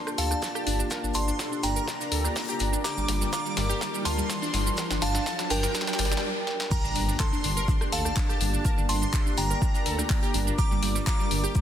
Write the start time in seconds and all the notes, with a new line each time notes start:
Already playing: A#3 D4 F4 G4 D5, riser
0.07 D4, cross-stick, shaker
0.18 D2 A4 F5 A5, open hi-hat, shaker
0.31 D4, cross-stick, shaker
0.42 D4, kick, snare, shaker
0.55 G4, cross-stick, shaker
0.67 G1 D4, open hi-hat, shaker
0.79 D4, shaker
0.90 A#4, kick, snare, shaker
1.03 G1 D4, shaker
1.14 G1 D4 A5 C6, open hi-hat, shaker
1.28 D4, shaker
1.39 A4, kick, snare, shaker
1.52 D4, shaker
1.63 G1 D4 G5 A#5, snare, open hi-hat, shaker
1.76 A#4, shaker
1.87 D4, kick, snare, shaker
2.00 D4, snare, shaker
2.12 D2 A4, snare, open hi-hat, shaker
2.24 D4, cross-stick, snare, shaker
2.36 D4, kick, snare, open hi-hat, shaker
2.49 G4, closed hi-hat, shaker
2.60 G1 D4, open hi-hat, shaker
2.73 D4, shaker
2.84 G4 A#4 A#5 D6, kick, snare, shaker
2.97 G1 G3, shaker
3.08 G1 G3, snare, open hi-hat, shaker
3.21 G3, snare, shaker
3.33 F4 A#5 D6, kick, snare, shaker
3.45 G3, shaker
3.57 G1 G3, snare, open hi-hat, shaker
3.69 G4, snare, shaker
3.81 G3, kick, snare, shaker
3.94 G3, shaker
4.05 D2 F4 A5 C6, snare, open hi-hat, shaker
4.18 G3, shaker
4.29 G3, kick, snare, shaker
4.42 D4, shaker
4.54 G1 G3, snare, open hi-hat, shaker
4.66 G3, shaker
4.77 A#4, kick, snare, shaker
4.79 shaker
4.91 G1 D4, snare, shaker
5.02 G1 D4 F5 A5, snare, open hi-hat, shaker
5.15 D4, snare, shaker
5.26 A4, kick, snare, shaker
5.39 D4, snare, shaker
5.50 G1 D4 A#4 G5, snare, open hi-hat, shaker
5.63 A#4, snare, shaker
5.74 D4, kick, snare, shaker
5.81 snare
5.87 D4, snare, shaker
5.93 snare
5.98 G1 D5, snare, open hi-hat, shaker
6.05 snare
6.11 D4, snare, shaker
6.17 snare
6.47 snare
6.60 snare
6.71 A#3 D4 F4 G4 A#4 D5 G5 A#5, kick, crash, impact, shaker
6.84 G1 D4, shaker
6.95 G1 D4, open hi-hat, shaker
7.08 D4, snare, shaker
7.20 A4 A5 C6, kick, snare, clap, shaker
7.33 D4, shaker
7.44 G1 D4, open hi-hat, shaker
7.57 A#4, shaker
7.68 D4, kick, shaker
7.81 D4, cross-stick, shaker
7.92 D2 A4 F5 A5, open hi-hat, shaker
8.05 D4, cross-stick, shaker
8.16 D4, kick, snare, clap, shaker
8.29 G4, cross-stick, shaker
8.41 G1 D4, open hi-hat, shaker
8.53 D4, shaker
8.65 A#4, kick, shaker
8.78 G1 D4, shaker
8.89 G1 D4 A5 C6, open hi-hat, shaker
9.02 D4, shaker
9.13 A4, kick, snare, clap, shaker
9.26 D4, shaker
9.37 G1 D4 G5 A#5, snare, open hi-hat, shaker
9.50 A#4, shaker
9.62 D4, kick, shaker
9.73 D4, snare, shaker
9.85 D2 A4, snare, open hi-hat, shaker
9.98 D4, cross-stick, snare, shaker
10.09 D4, kick, snare, clap, open hi-hat, shaker
10.23 G4, closed hi-hat, shaker
10.34 G1 D4, open hi-hat, shaker
10.47 D4, shaker
10.58 G4 A#4 A#5 D6, kick, shaker
10.71 G1 G3, shaker
10.83 G1 G3, open hi-hat, shaker
10.95 G3, snare, shaker
11.06 F4 A#5 D6, kick, snare, clap, shaker
11.19 G3, shaker
11.31 G1 G3, open hi-hat, shaker
11.44 G4, shaker
11.55 G3, kick, shaker